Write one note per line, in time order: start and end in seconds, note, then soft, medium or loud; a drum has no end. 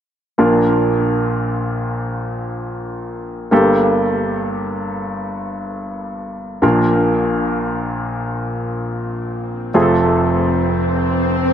0.38 3.47 A#1 soft
0.38 3.47 A#2 soft
0.38 3.47 A#3 soft
0.38 3.47 D4 soft
0.38 3.47 F4 soft
0.38 3.48 A#4 medium
3.51 6.60 G1 soft
3.51 6.60 G2 medium
3.51 6.59 A#3 medium
3.51 6.59 D4 soft
3.51 6.60 G4 soft
3.51 6.60 A4 medium
6.62 9.71 A#1 soft
6.62 9.71 A#2 medium
6.62 9.70 A#3 soft
6.62 9.70 D4 soft
6.62 9.71 F4 soft
6.62 9.71 A#4 medium
6.62 swell medium
9.74 11.53 F1 medium
9.74 11.53 F2 medium
9.74 11.53 A3 medium
9.74 11.53 C4 soft
9.74 11.53 F4 soft
9.74 9.82 G#4 soft
9.82 11.53 A4 medium